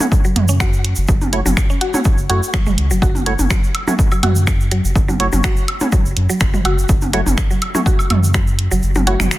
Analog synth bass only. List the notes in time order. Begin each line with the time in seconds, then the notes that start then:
0.36 F#2
0.97 F#1
1.09 F#1
1.46 F#1
2.18 F#1
2.29 F#2
2.67 E1
2.78 C#2
2.91 F#1
3.02 F#1
3.39 F#1
4.23 F#2
4.84 F#1
4.96 F#1
5.33 F#1
6.05 F#1
6.17 F#2
6.41 F#1
6.65 F#1
6.89 F#1
7.26 F#1
8.10 F#2
8.71 F#1
8.83 F#1
9.20 F#1